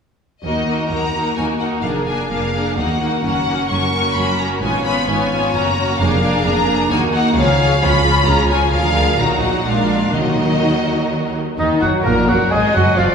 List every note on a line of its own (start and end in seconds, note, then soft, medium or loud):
0.43 0.83 D#2 soft
0.43 0.67 A#3 soft
0.43 0.67 D#4 soft
0.43 0.66 F#4 soft
0.43 0.65 A#4 soft
0.43 0.87 D#5 soft
0.66 0.89 A#3 soft
0.66 0.89 D#4 soft
0.66 0.90 F#4 soft
0.66 0.90 A#4 soft
0.89 1.30 D#2 soft
0.89 1.13 A#3 soft
0.89 1.13 D#4 soft
0.89 1.13 F#4 soft
0.89 1.13 A#4 soft
0.89 1.36 A#5 medium
1.15 1.37 A#3 soft
1.15 1.36 D#4 soft
1.15 1.36 F#4 soft
1.15 1.37 A#4 soft
1.37 1.76 D#2 soft
1.37 1.76 D#2 medium
1.37 1.61 A#3 soft
1.37 1.60 D#4 soft
1.37 1.60 F#4 soft
1.37 1.60 A#4 soft
1.37 1.45 G#5 soft
1.60 1.84 A#3 soft
1.60 1.84 D#4 soft
1.60 1.84 F#4 soft
1.60 1.83 A#4 soft
1.60 1.68 F#5 soft
1.82 2.22 F1 medium
1.82 2.22 F2 soft
1.82 2.07 D4 soft
1.82 2.06 G#4 soft
1.82 2.06 A#4 soft
1.82 1.90 F5 soft
1.86 2.07 A#3 soft
2.07 2.30 A#3 soft
2.07 2.30 D4 soft
2.07 2.30 G#4 soft
2.07 2.30 A#4 soft
2.07 2.30 G#5 soft
2.30 2.70 F1 soft
2.30 2.69 F2 soft
2.30 2.54 A#3 soft
2.30 2.54 D4 soft
2.30 2.53 G#4 soft
2.30 2.53 A#4 soft
2.30 2.76 F5 medium
2.54 2.76 A#3 soft
2.54 2.77 D4 soft
2.54 2.77 G#4 soft
2.54 2.76 A#4 soft
2.77 3.16 D#2 medium
2.77 3.16 D#2 soft
2.77 3.00 A#3 soft
2.77 3.00 D#4 soft
2.77 3.00 F#4 soft
2.77 3.00 A#4 soft
2.77 3.22 F#5 medium
3.01 3.22 A#3 soft
3.01 3.23 D#4 soft
3.01 3.23 F#4 soft
3.01 3.21 A#4 soft
3.23 3.62 F#1 soft
3.23 3.62 F#2 medium
3.23 3.45 A#3 soft
3.23 3.46 C#4 soft
3.23 3.46 F#4 soft
3.23 3.45 A#4 soft
3.23 3.69 F#5 medium
3.46 3.69 A#3 soft
3.46 3.69 C#4 soft
3.46 3.70 F#4 soft
3.46 3.69 A#4 soft
3.70 4.09 F#1 medium
3.70 4.09 F#2 medium
3.70 3.92 A#3 soft
3.70 3.93 C#4 soft
3.70 3.93 F#4 soft
3.70 3.92 A#4 soft
3.70 4.15 C#6 medium
3.93 4.15 A#3 soft
3.93 4.16 C#4 soft
3.93 4.16 F#4 soft
3.93 4.16 A#4 soft
4.15 4.55 F#1 soft
4.15 4.55 F#2 medium
4.15 4.39 A#3 soft
4.15 4.39 C#4 soft
4.15 4.40 F#4 soft
4.15 4.40 A#4 soft
4.15 4.39 B5 medium
4.39 4.63 A#3 soft
4.39 4.61 C#4 soft
4.39 4.64 F#4 soft
4.39 4.64 A#4 soft
4.39 4.47 A#5 medium
4.62 5.01 G#1 medium
4.62 5.01 G#2 medium
4.62 4.84 B3 soft
4.62 4.85 C#4 soft
4.62 4.86 F4 soft
4.62 4.86 C#5 soft
4.62 4.85 G#5 medium
4.85 5.08 B3 soft
4.85 5.08 C#4 soft
4.85 5.09 F4 soft
4.85 5.09 C#5 soft
4.85 5.08 B5 medium
5.08 5.47 G#1 medium
5.08 5.47 G#2 medium
5.08 5.31 B3 soft
5.08 5.31 C#4 soft
5.08 5.32 F4 soft
5.08 5.32 C#5 soft
5.08 5.53 G#5 medium
5.33 5.54 B3 soft
5.33 5.54 C#4 soft
5.33 5.55 F4 soft
5.33 5.54 C#5 soft
5.54 5.92 F#1 medium
5.54 5.92 F#2 medium
5.54 5.78 A#3 medium
5.54 5.78 C#4 medium
5.54 5.77 F#4 soft
5.54 5.77 C#5 soft
5.54 6.00 A#5 medium
5.79 6.00 A#3 soft
5.79 6.00 C#4 soft
5.79 6.00 F#4 soft
5.79 6.00 C#5 soft
5.99 6.37 F1 medium
5.99 6.37 F2 medium
5.99 6.22 A#3 medium
5.99 6.22 D4 medium
5.99 6.23 G#4 medium
5.99 6.22 A#4 medium
5.99 6.44 F5 medium
6.23 6.45 A#3 medium
6.23 6.45 D4 medium
6.23 6.44 G#4 medium
6.23 6.45 A#4 soft
6.44 6.83 F1 medium
6.44 6.83 F2 medium
6.44 6.66 A#3 soft
6.44 6.66 D4 soft
6.44 6.67 G#4 medium
6.44 6.67 A#4 medium
6.44 6.90 A#5 medium
6.67 6.89 A#3 medium
6.67 6.90 D4 medium
6.67 6.90 G#4 soft
6.67 6.90 A#4 soft
6.90 7.28 D#2 medium
6.90 7.29 D#2 medium
6.90 7.12 A#3 medium
6.90 7.12 D#4 medium
6.90 7.11 F#4 soft
6.90 7.11 A#4 soft
6.90 6.99 G#5 medium
7.12 7.35 A#3 soft
7.12 7.35 D#4 medium
7.12 7.35 F#4 soft
7.12 7.35 A#4 soft
7.12 7.35 F#5 medium
7.36 7.74 C#2 medium
7.36 7.58 F3 medium
7.36 7.58 F4 medium
7.36 7.58 G#4 medium
7.36 7.58 C#5 medium
7.36 7.81 F5 medium
7.59 7.81 F3 soft
7.59 7.80 F4 soft
7.59 7.81 G#4 medium
7.59 7.81 C#5 soft
7.81 8.19 C#2 medium
7.81 8.20 C#2 medium
7.81 8.03 F3 medium
7.81 8.04 F4 medium
7.81 8.04 G#4 medium
7.81 8.04 C#5 medium
7.81 8.27 B5 medium
8.04 8.25 F3 soft
8.04 8.25 F4 medium
8.04 8.27 G#4 soft
8.04 8.26 C#5 soft
8.26 8.65 C#2 medium
8.26 8.47 F3 soft
8.26 8.47 F4 medium
8.26 8.49 G#4 soft
8.26 8.49 C#5 soft
8.26 8.49 A#5 medium
8.48 8.71 F3 medium
8.48 8.70 F4 soft
8.48 8.72 G#4 soft
8.48 8.72 C#5 soft
8.48 8.72 G#5 medium
8.72 9.16 D2 medium
8.72 9.16 F3 medium
8.72 9.15 F4 soft
8.72 9.16 G#4 soft
8.72 9.16 A#4 soft
8.72 9.18 F5 medium
9.18 9.64 A#1 medium
9.18 9.65 A#2 medium
9.18 9.65 F#3 soft
9.18 9.66 D#4 soft
9.18 9.66 F#4 medium
9.18 9.64 A#4 soft
9.18 9.42 A#5 medium
9.40 9.64 F#5 medium
9.65 10.12 A#1 soft
9.65 10.13 A#2 soft
9.65 10.14 G#3 soft
9.65 10.13 D4 soft
9.65 10.13 F4 soft
9.65 10.11 A#4 soft
9.65 10.13 F5 medium
10.13 11.36 D#2 soft
10.13 10.82 D#3 medium
10.13 11.36 D#3 medium
10.13 11.36 F#3 soft
10.13 11.39 D#4 soft
10.13 11.38 F#4 soft
10.13 11.35 A#4 soft
10.13 11.34 D#5 medium
11.57 11.66 D#2 medium
11.57 11.67 D#2 medium
11.57 11.80 D#3 medium
11.57 11.85 D#3 medium
11.57 11.81 D#3 soft
11.57 11.80 D#4 medium
11.57 11.84 D#4 medium
11.57 11.70 D#5 medium
11.57 11.81 D#5 medium
11.80 11.91 F#1 medium
11.80 11.89 F#2 soft
11.80 12.05 F#3 medium
11.80 12.04 F#3 medium
11.80 12.06 F#3 medium
11.80 11.88 F#4 soft
11.80 12.04 F#4 medium
11.80 11.92 F#5 medium
11.80 12.08 F#5 medium
12.03 12.28 A#1 medium
12.03 12.28 A#2 medium
12.03 12.28 A#3 medium
12.03 12.15 A#3 medium
12.03 12.27 A#4 medium
12.03 12.30 A#4 medium
12.03 12.49 A#4 soft
12.03 12.14 A#5 medium
12.03 12.29 A#5 medium
12.07 12.30 A#3 medium
12.26 12.52 F#1 medium
12.26 12.52 F#2 medium
12.26 12.38 F#3 medium
12.26 12.51 F#3 soft
12.26 12.38 F#3 soft
12.26 12.50 F#4 medium
12.26 12.51 F#4 medium
12.26 12.52 F#5 medium
12.26 12.35 F#5 medium
12.50 12.61 G#1 medium
12.50 12.60 G#2 medium
12.50 12.62 G#3 medium
12.50 12.63 G#3 medium
12.50 12.75 G#3 medium
12.50 12.74 G#4 medium
12.50 12.62 G#4 medium
12.50 12.98 D#5 medium
12.50 12.74 G#5 medium
12.50 12.75 G#5 medium
12.72 12.84 F#1 medium
12.72 12.83 F#2 medium
12.72 12.84 F#3 medium
12.72 12.98 F#3 soft
12.72 12.97 F#4 medium
12.72 12.99 F#4 medium
12.72 12.96 F#5 medium
12.72 12.99 F#5 medium
12.77 12.99 F#3 medium
12.96 13.07 F1 medium
12.96 13.06 F2 medium
12.96 13.07 F3 medium
12.96 13.09 F3 medium
12.96 13.04 F4 medium
12.96 13.15 F4 medium
12.96 13.15 D5 medium
12.96 13.15 F5 medium
13.00 13.15 F3 medium